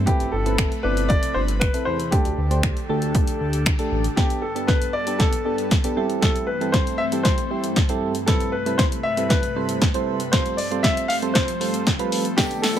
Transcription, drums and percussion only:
0.07 kick loud
0.07 closed hi-hat medium
0.20 closed hi-hat soft
0.46 closed hi-hat soft
0.58 finger snap loud
0.58 kick loud
0.58 closed hi-hat medium
0.72 closed hi-hat medium
0.97 closed hi-hat medium
1.10 kick loud
1.10 closed hi-hat medium
1.23 closed hi-hat medium
1.48 closed hi-hat medium
1.61 finger snap loud
1.61 kick loud
1.61 closed hi-hat medium
1.74 closed hi-hat medium
2.00 closed hi-hat soft
2.12 kick loud
2.12 closed hi-hat medium
2.25 closed hi-hat soft
2.51 closed hi-hat soft
2.63 finger snap loud
2.63 kick loud
2.63 closed hi-hat medium
2.77 closed hi-hat soft
3.02 closed hi-hat medium
3.15 kick loud
3.15 closed hi-hat medium
3.27 closed hi-hat medium
3.53 closed hi-hat medium
3.66 finger snap loud
3.66 kick loud
3.66 closed hi-hat medium
3.79 closed hi-hat medium
4.04 closed hi-hat soft
4.17 kick loud
4.17 snare soft
4.17 closed hi-hat medium
4.30 closed hi-hat soft
4.56 closed hi-hat soft
4.68 kick loud
4.68 snare medium
4.68 closed hi-hat medium
4.82 closed hi-hat medium
5.07 closed hi-hat medium
5.20 kick loud
5.20 snare medium
5.20 closed hi-hat medium
5.33 closed hi-hat medium
5.58 closed hi-hat medium
5.71 kick loud
5.71 snare medium
5.71 closed hi-hat medium
5.84 closed hi-hat medium
6.10 closed hi-hat soft
6.22 kick loud
6.22 snare medium
6.22 closed hi-hat medium
6.36 closed hi-hat soft
6.61 closed hi-hat soft
6.74 kick loud
6.74 snare medium
6.74 closed hi-hat medium
6.87 closed hi-hat medium
7.12 closed hi-hat medium
7.25 kick loud
7.25 snare medium
7.25 closed hi-hat medium
7.38 closed hi-hat medium
7.64 closed hi-hat medium
7.76 kick loud
7.76 snare medium
7.76 closed hi-hat medium
7.89 closed hi-hat medium
8.15 closed hi-hat medium
8.28 kick loud
8.28 snare medium
8.28 closed hi-hat medium
8.40 closed hi-hat soft
8.66 closed hi-hat soft
8.79 kick loud
8.79 snare medium
8.79 closed hi-hat medium
8.92 closed hi-hat medium
9.17 closed hi-hat medium
9.30 kick loud
9.30 snare medium
9.30 closed hi-hat medium
9.43 closed hi-hat medium
9.69 closed hi-hat medium
9.82 kick loud
9.82 snare medium
9.82 closed hi-hat medium
9.94 closed hi-hat medium
10.20 closed hi-hat medium
10.33 kick loud
10.33 snare medium
10.33 closed hi-hat medium
10.46 closed hi-hat soft
10.58 open hi-hat medium
10.72 closed hi-hat soft
10.84 kick loud
10.84 snare medium
10.84 closed hi-hat medium
10.97 closed hi-hat medium
11.10 open hi-hat medium
11.22 closed hi-hat medium
11.35 kick loud
11.35 snare medium
11.35 closed hi-hat medium
11.48 closed hi-hat medium
11.61 open hi-hat medium
11.74 closed hi-hat medium
11.87 kick loud
11.87 snare medium
11.87 closed hi-hat medium
11.99 closed hi-hat medium
12.12 open hi-hat medium
12.25 closed hi-hat medium
12.38 kick loud
12.38 snare medium
12.38 closed hi-hat medium
12.38 tambourine medium
12.51 closed hi-hat soft
12.63 snare medium
12.63 open hi-hat medium
12.63 tambourine soft

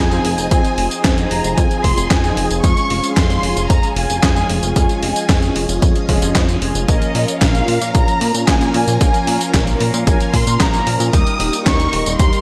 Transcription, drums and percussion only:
0.11 closed hi-hat soft
0.11 tambourine soft
0.25 open hi-hat loud
0.38 closed hi-hat soft
0.38 tambourine medium
0.51 kick loud
0.51 closed hi-hat loud
0.51 tambourine soft
0.65 closed hi-hat soft
0.65 tambourine soft
0.78 open hi-hat loud
0.91 closed hi-hat soft
0.91 tambourine medium
1.04 kick loud
1.04 snare loud
1.04 clap loud
1.04 closed hi-hat medium
1.04 tambourine soft
1.18 closed hi-hat soft
1.18 tambourine soft
1.31 open hi-hat loud
1.44 closed hi-hat soft
1.44 tambourine medium
1.58 kick loud
1.58 closed hi-hat medium
1.58 tambourine soft
1.71 closed hi-hat soft
1.71 tambourine soft
1.84 kick medium
1.84 open hi-hat loud
1.97 closed hi-hat soft
1.97 tambourine medium
2.11 kick loud
2.11 snare loud
2.11 clap loud
2.11 closed hi-hat medium
2.11 tambourine soft
2.24 closed hi-hat soft
2.24 tambourine soft
2.37 open hi-hat loud
2.50 closed hi-hat soft
2.50 tambourine medium
2.64 kick loud
2.64 closed hi-hat medium
2.64 tambourine soft
2.77 closed hi-hat soft
2.77 tambourine soft
2.90 open hi-hat loud
3.04 closed hi-hat soft
3.04 tambourine medium
3.17 kick loud
3.17 snare loud
3.17 clap loud
3.17 closed hi-hat medium
3.17 tambourine soft
3.30 closed hi-hat soft
3.30 tambourine soft
3.43 open hi-hat loud
3.57 closed hi-hat soft
3.57 tambourine medium
3.70 kick loud
3.70 closed hi-hat medium
3.70 tambourine soft
3.83 closed hi-hat soft
3.83 tambourine soft
3.96 open hi-hat loud
4.10 closed hi-hat soft
4.10 tambourine medium
4.23 kick loud
4.23 snare loud
4.23 clap loud
4.23 closed hi-hat medium
4.23 tambourine soft
4.36 closed hi-hat soft
4.36 tambourine soft
4.50 open hi-hat loud
4.63 closed hi-hat soft
4.63 tambourine medium
4.76 kick loud
4.76 closed hi-hat medium
4.76 tambourine medium
4.89 closed hi-hat soft
4.89 tambourine soft
5.03 open hi-hat loud
5.16 closed hi-hat soft
5.16 tambourine medium
5.29 kick loud
5.29 snare loud
5.29 clap loud
5.29 open hi-hat medium
5.29 tambourine medium
5.42 closed hi-hat soft
5.42 tambourine soft
5.56 open hi-hat loud
5.69 closed hi-hat soft
5.69 tambourine medium
5.82 kick loud
5.82 closed hi-hat medium
5.82 tambourine soft
5.96 closed hi-hat soft
5.96 tambourine soft
6.09 kick medium
6.09 open hi-hat loud
6.22 closed hi-hat soft
6.22 tambourine medium
6.35 kick loud
6.35 snare loud
6.35 clap loud
6.35 closed hi-hat medium
6.35 tambourine medium
6.49 closed hi-hat soft
6.49 tambourine soft
6.62 open hi-hat loud
6.75 closed hi-hat soft
6.75 tambourine medium
6.88 kick loud
6.88 closed hi-hat medium
6.88 tambourine medium
7.02 closed hi-hat soft
7.02 tambourine soft
7.15 open hi-hat loud
7.28 closed hi-hat soft
7.28 tambourine medium
7.42 kick loud
7.42 snare loud
7.42 clap loud
7.42 closed hi-hat medium
7.42 tambourine medium
7.55 closed hi-hat soft
7.55 tambourine soft
7.68 open hi-hat loud
7.81 closed hi-hat soft
7.81 tambourine medium
7.95 kick loud
7.95 closed hi-hat medium
7.95 tambourine medium
8.08 closed hi-hat soft
8.08 tambourine soft
8.21 open hi-hat loud
8.34 closed hi-hat soft
8.34 tambourine medium
8.48 kick loud
8.48 snare loud
8.48 clap loud
8.48 closed hi-hat medium
8.48 tambourine medium
8.61 closed hi-hat soft
8.61 tambourine soft
8.74 open hi-hat loud
8.88 closed hi-hat soft
8.88 tambourine medium
9.01 kick loud
9.01 closed hi-hat loud
9.01 tambourine medium
9.14 closed hi-hat soft
9.14 tambourine soft
9.27 open hi-hat loud
9.41 closed hi-hat soft
9.41 tambourine medium
9.54 kick loud
9.54 snare loud
9.54 clap medium
9.54 closed hi-hat medium
9.54 tambourine medium
9.67 closed hi-hat soft
9.67 tambourine soft
9.80 open hi-hat loud
9.94 closed hi-hat soft
9.94 tambourine medium
10.07 kick loud
10.07 closed hi-hat medium
10.07 tambourine medium
10.20 closed hi-hat soft
10.20 tambourine soft
10.34 kick medium
10.34 open hi-hat loud
10.47 closed hi-hat soft
10.47 tambourine medium
10.60 kick loud
10.60 snare loud
10.60 clap loud
10.60 closed hi-hat medium
10.60 tambourine medium
10.74 closed hi-hat soft
10.74 tambourine soft
10.87 open hi-hat loud
11.00 closed hi-hat soft
11.00 tambourine medium
11.13 kick loud
11.13 closed hi-hat loud
11.13 tambourine medium
11.27 closed hi-hat soft
11.27 tambourine soft
11.40 open hi-hat loud
11.53 closed hi-hat soft
11.53 tambourine medium
11.66 kick loud
11.66 snare loud
11.66 clap loud
11.66 closed hi-hat medium
11.66 tambourine medium
11.80 closed hi-hat soft
11.80 tambourine soft
11.93 open hi-hat loud
12.06 closed hi-hat soft
12.06 tambourine medium
12.19 kick loud
12.19 closed hi-hat medium
12.19 tambourine soft
12.33 closed hi-hat soft
12.33 tambourine soft

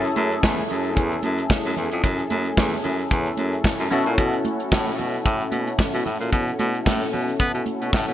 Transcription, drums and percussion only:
0.05 closed hi-hat medium
0.16 closed hi-hat medium
0.16 muted conga soft
0.16 high conga medium
0.31 closed hi-hat soft
0.43 kick loud
0.43 snare loud
0.43 high conga medium
0.58 closed hi-hat soft
0.70 closed hi-hat medium
0.70 muted conga soft
0.70 low conga medium
0.85 closed hi-hat soft
0.97 kick loud
0.97 closed hi-hat medium
0.97 muted conga soft
1.12 closed hi-hat soft
1.23 closed hi-hat medium
1.23 high conga medium
1.38 closed hi-hat soft
1.50 kick loud
1.50 snare loud
1.65 closed hi-hat soft
1.77 closed hi-hat medium
1.77 low conga medium
1.92 closed hi-hat medium
2.04 kick medium
2.04 closed hi-hat medium
2.04 muted conga soft
2.04 low conga medium
2.19 closed hi-hat soft
2.30 closed hi-hat medium
2.30 high conga medium
2.45 closed hi-hat soft
2.57 kick loud
2.57 snare loud
2.57 high conga medium
2.72 closed hi-hat soft
2.84 closed hi-hat medium
2.84 muted conga soft
2.84 low conga medium
2.99 closed hi-hat soft
3.11 kick loud
3.11 closed hi-hat medium
3.11 muted conga soft
3.26 closed hi-hat soft
3.37 closed hi-hat medium
3.37 muted conga soft
3.37 high conga medium
3.53 closed hi-hat soft
3.64 kick loud
3.64 snare loud
3.79 closed hi-hat soft
3.91 closed hi-hat medium
3.91 low conga medium
4.06 closed hi-hat medium
4.18 kick loud
4.18 closed hi-hat medium
4.18 muted conga soft
4.18 low conga medium
4.33 closed hi-hat soft
4.45 closed hi-hat medium
4.45 muted conga soft
4.45 high conga medium
4.60 closed hi-hat soft
4.72 kick loud
4.72 snare loud
4.72 high conga medium
4.86 closed hi-hat soft
4.98 closed hi-hat medium
4.98 muted conga soft
4.98 low conga medium
5.13 closed hi-hat soft
5.26 kick loud
5.26 closed hi-hat medium
5.26 muted conga soft
5.41 closed hi-hat soft
5.52 closed hi-hat medium
5.52 muted conga soft
5.52 high conga medium
5.68 closed hi-hat medium
5.79 kick loud
5.79 snare loud
5.79 muted conga soft
5.94 closed hi-hat soft
6.06 closed hi-hat medium
6.06 muted conga soft
6.06 low conga medium
6.21 closed hi-hat medium
6.33 kick loud
6.33 closed hi-hat medium
6.33 low conga medium
6.48 closed hi-hat medium
6.59 closed hi-hat medium
6.59 high conga medium
6.74 closed hi-hat soft
6.86 kick loud
6.86 snare loud
6.86 muted conga soft
6.86 high conga medium
7.01 closed hi-hat soft
7.13 closed hi-hat medium
7.13 muted conga soft
7.13 low conga medium
7.28 closed hi-hat soft
7.40 kick loud
7.40 closed hi-hat medium
7.40 muted conga soft
7.55 closed hi-hat soft
7.66 closed hi-hat medium
7.66 high conga medium
7.82 closed hi-hat soft
7.93 kick loud
7.93 snare medium
7.93 muted conga soft
8.08 closed hi-hat soft

